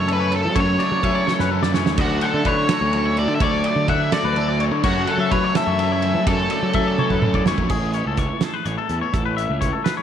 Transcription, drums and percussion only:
0.08 ride medium
0.32 ride medium
0.56 kick loud
0.56 ride loud
0.80 ride medium
1.03 kick medium
1.03 ride medium
1.27 snare medium
1.39 snare medium
1.63 snare medium
1.74 snare medium
1.86 snare medium
1.98 kick loud
1.98 ride loud
1.98 crash medium
2.21 ride medium
2.45 kick medium
2.45 ride medium
2.69 snare loud
2.69 ride loud
2.93 ride medium
3.17 ride medium
3.40 kick loud
3.40 ride loud
3.64 ride medium
3.88 kick medium
3.88 ride medium
4.12 snare loud
4.12 ride loud
4.36 ride medium
4.60 ride medium
4.83 kick loud
4.83 crash loud
5.07 ride medium
5.31 kick medium
5.31 ride medium
5.55 snare loud
5.55 ride medium
5.79 ride medium
6.02 ride medium
6.27 kick loud
6.27 ride loud
6.50 ride medium
6.73 kick medium
6.73 ride medium
6.98 high tom medium
7.10 kick medium
7.22 mid tom medium
7.34 kick medium
7.46 snare medium
7.58 kick medium
7.69 kick loud
7.69 crash medium
7.93 closed hi-hat medium
8.17 kick medium
8.17 closed hi-hat medium
8.41 snare loud
8.41 closed hi-hat medium
8.65 closed hi-hat medium
8.89 closed hi-hat medium
9.14 kick loud
9.14 closed hi-hat medium
9.38 closed hi-hat medium
9.62 kick medium
9.62 closed hi-hat medium
9.86 snare loud
9.86 closed hi-hat medium

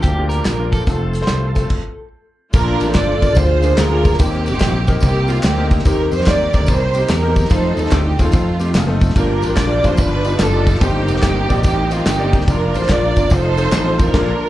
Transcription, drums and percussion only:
0.02 kick loud
0.02 closed hi-hat medium
0.02 tambourine medium
0.30 closed hi-hat medium
0.30 tambourine medium
0.45 snare loud
0.45 clap medium
0.45 closed hi-hat medium
0.45 tambourine loud
0.72 kick medium
0.72 closed hi-hat medium
0.72 tambourine medium
0.87 kick loud
0.87 closed hi-hat medium
0.87 tambourine medium
1.13 closed hi-hat medium
1.13 tambourine medium
1.21 snare soft
1.27 snare loud
1.27 clap medium
1.27 closed hi-hat medium
1.27 tambourine medium
1.55 kick medium
1.55 closed hi-hat medium
1.55 tambourine soft
1.70 kick medium
1.70 crash medium
2.53 kick loud
2.53 crash medium
2.53 tambourine medium
2.80 ride medium
2.80 tambourine medium
2.94 kick medium
2.94 snare loud
2.94 clap medium
2.94 ride medium
2.94 tambourine medium
3.22 kick medium
3.22 ride medium
3.22 tambourine medium
3.35 kick loud
3.35 ride medium
3.35 tambourine medium
3.62 ride medium
3.62 tambourine medium
3.78 snare loud
3.78 clap loud
3.78 ride medium
3.78 tambourine loud
4.05 kick loud
4.05 ride medium
4.05 tambourine medium
4.13 snare soft
4.19 kick loud
4.19 ride medium
4.19 tambourine medium
4.46 ride medium
4.46 tambourine medium
4.60 kick medium
4.60 snare loud
4.60 clap medium
4.60 ride medium
4.60 tambourine medium
4.87 kick loud
4.87 ride medium
4.87 tambourine medium
5.00 kick loud
5.00 ride medium
5.00 tambourine medium
5.28 ride medium
5.28 tambourine medium
5.43 snare loud
5.43 clap loud
5.43 ride medium
5.43 tambourine loud
5.71 kick loud
5.71 ride medium
5.71 tambourine medium
5.79 snare soft
5.85 kick loud
5.85 ride medium
5.85 tambourine medium
6.11 ride medium
6.11 tambourine medium
6.21 snare soft
6.26 kick loud
6.26 snare loud
6.26 clap medium
6.26 ride medium
6.26 tambourine medium
6.53 kick loud
6.53 ride medium
6.53 tambourine medium
6.66 kick loud
6.66 ride medium
6.66 tambourine medium
6.94 ride medium
6.94 tambourine medium
7.09 snare loud
7.09 clap loud
7.09 ride medium
7.09 tambourine loud
7.36 kick loud
7.36 ride medium
7.36 tambourine medium
7.45 snare soft
7.50 kick loud
7.50 ride medium
7.50 tambourine medium
7.77 ride medium
7.77 tambourine medium
7.86 snare soft
7.91 kick loud
7.91 snare loud
7.91 clap medium
7.91 ride medium
7.91 tambourine medium
8.19 kick medium
8.19 ride medium
8.19 tambourine medium
8.32 kick loud
8.32 ride medium
8.32 tambourine medium
8.60 ride medium
8.60 tambourine medium
8.75 snare loud
8.75 clap loud
8.75 ride medium
8.75 tambourine medium
9.01 kick loud
9.01 ride medium
9.01 tambourine medium
9.10 snare soft
9.16 kick loud
9.16 ride medium
9.16 tambourine medium
9.42 ride medium
9.42 tambourine medium
9.57 kick medium
9.57 snare loud
9.57 clap medium
9.57 ride medium
9.57 tambourine medium
9.84 kick medium
9.84 ride medium
9.84 tambourine medium
9.97 kick loud
9.97 ride medium
9.97 tambourine medium
10.25 ride medium
10.25 tambourine medium
10.39 snare loud
10.39 clap loud
10.39 ride medium
10.39 tambourine loud
10.67 kick loud
10.67 ride medium
10.67 tambourine medium
10.75 snare soft
10.81 kick loud
10.81 ride medium
10.81 tambourine medium
11.08 ride medium
11.08 tambourine medium
11.16 snare soft
11.22 kick loud
11.22 snare loud
11.22 clap medium
11.22 ride medium
11.22 tambourine medium
11.50 kick medium
11.50 ride medium
11.50 tambourine medium
11.63 kick loud
11.63 ride medium
11.63 tambourine medium
11.91 ride medium
11.91 tambourine medium
12.06 snare loud
12.06 clap loud
12.06 ride medium
12.06 tambourine loud
12.33 kick loud
12.33 ride medium
12.33 tambourine medium
12.41 snare soft
12.48 kick loud
12.48 ride medium
12.48 tambourine medium
12.74 ride medium
12.74 tambourine medium
12.83 snare soft
12.89 kick loud
12.89 snare loud
12.89 clap medium
12.89 ride medium
12.89 tambourine medium
13.16 kick medium
13.16 ride medium
13.16 tambourine medium
13.30 kick loud
13.30 ride medium
13.30 tambourine loud
13.57 ride medium
13.57 tambourine medium
13.72 snare loud
13.72 clap medium
13.72 ride medium
13.72 tambourine loud
13.99 kick loud
13.99 ride medium
13.99 tambourine medium
14.14 kick loud
14.14 snare loud
14.14 crash medium

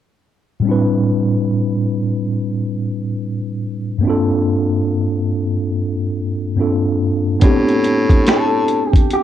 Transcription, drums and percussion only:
7.41 kick loud
7.41 closed hi-hat medium
7.68 closed hi-hat soft
7.84 closed hi-hat medium
8.09 kick medium
8.09 closed hi-hat soft
8.26 finger snap medium
8.26 snare loud
8.26 closed hi-hat medium
8.68 closed hi-hat medium
8.93 kick medium
8.93 closed hi-hat medium
9.11 closed hi-hat medium

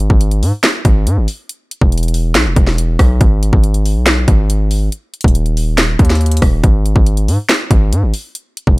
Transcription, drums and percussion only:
0.10 kick loud
0.21 closed hi-hat medium
0.31 closed hi-hat medium
0.43 open hi-hat medium
0.64 snare loud
0.64 clap loud
0.64 closed hi-hat medium
0.85 kick loud
0.85 closed hi-hat medium
1.07 closed hi-hat medium
1.28 open hi-hat medium
1.49 closed hi-hat medium
1.71 closed hi-hat medium
1.81 kick loud
1.92 closed hi-hat medium
1.98 closed hi-hat medium
2.03 closed hi-hat medium
2.08 closed hi-hat medium
2.14 open hi-hat medium
2.35 snare loud
2.35 clap loud
2.35 closed hi-hat medium
2.56 kick loud
2.56 closed hi-hat medium
2.67 snare medium
2.78 closed hi-hat medium
2.99 kick loud
2.99 cross-stick loud
2.99 open hi-hat medium
3.21 kick loud
3.21 closed hi-hat medium
3.43 closed hi-hat medium
3.53 kick loud
3.64 closed hi-hat medium
3.74 closed hi-hat medium
3.86 open hi-hat medium
4.06 snare loud
4.06 clap loud
4.06 closed hi-hat medium
4.28 kick loud
4.28 closed hi-hat medium
4.50 closed hi-hat medium
4.71 open hi-hat medium
4.92 closed hi-hat medium
5.14 closed hi-hat soft
5.21 kick loud
5.21 closed hi-hat medium
5.28 closed hi-hat medium
5.35 closed hi-hat medium
5.46 closed hi-hat soft
5.57 open hi-hat medium
5.78 snare loud
5.78 clap loud
5.78 closed hi-hat medium
5.99 kick loud
5.99 closed hi-hat medium
6.05 closed hi-hat medium
6.10 snare medium
6.10 closed hi-hat medium
6.15 closed hi-hat soft
6.21 closed hi-hat soft
6.26 closed hi-hat medium
6.31 closed hi-hat medium
6.37 closed hi-hat medium
6.42 kick loud
6.42 cross-stick medium
6.42 open hi-hat medium
6.64 kick loud
6.64 closed hi-hat medium
6.86 closed hi-hat medium
6.96 kick loud
7.07 closed hi-hat medium
7.17 closed hi-hat medium
7.28 open hi-hat medium
7.49 snare loud
7.49 clap loud
7.49 closed hi-hat medium
7.71 kick loud
7.71 closed hi-hat medium
7.93 closed hi-hat medium
8.14 open hi-hat medium
8.35 closed hi-hat medium
8.57 closed hi-hat medium
8.67 kick loud

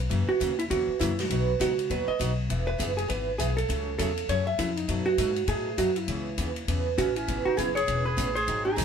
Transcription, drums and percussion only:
0.11 kick soft
0.11 ride medium
0.41 kick soft
0.41 hi-hat pedal medium
0.41 ride medium
0.59 ride soft
0.71 kick soft
0.71 ride medium
1.00 kick soft
1.00 hi-hat pedal medium
1.00 ride medium
1.19 snare medium
1.19 ride soft
1.30 kick soft
1.30 ride medium
1.60 kick soft
1.60 hi-hat pedal medium
1.60 ride medium
1.79 ride soft
1.90 kick soft
1.90 ride medium
2.20 kick soft
2.20 hi-hat pedal medium
2.20 ride medium
2.50 kick soft
2.50 ride medium
2.80 kick soft
2.80 hi-hat pedal medium
2.80 ride medium
2.98 ride soft
3.09 kick soft
3.09 ride medium
3.39 kick soft
3.39 hi-hat pedal medium
3.39 ride medium
3.58 ride soft
3.69 kick soft
3.69 ride medium
3.99 kick soft
3.99 hi-hat pedal medium
3.99 ride medium
4.17 ride soft
4.29 kick soft
4.29 ride medium
4.58 kick soft
4.58 hi-hat pedal medium
4.58 ride medium
4.77 ride soft
4.88 kick soft
4.88 ride medium
5.18 kick soft
5.18 hi-hat pedal medium
5.18 ride medium
5.36 ride soft
5.48 kick soft
5.48 ride medium
5.78 kick soft
5.78 hi-hat pedal medium
5.78 ride medium
5.96 ride soft
6.08 kick soft
6.08 ride medium
6.38 kick soft
6.38 hi-hat pedal medium
6.38 ride medium
6.56 ride soft
6.68 kick soft
6.68 ride medium
6.98 kick soft
6.98 hi-hat pedal medium
6.98 ride medium
7.16 ride soft
7.28 kick soft
7.28 ride medium
7.58 kick soft
7.58 hi-hat pedal medium
7.58 ride medium
7.77 ride soft
7.88 kick soft
7.88 ride medium
8.18 kick soft
8.18 hi-hat pedal medium
8.18 ride medium
8.36 ride soft
8.48 kick soft
8.48 ride medium
8.78 kick soft
8.78 hi-hat pedal medium
8.78 ride medium

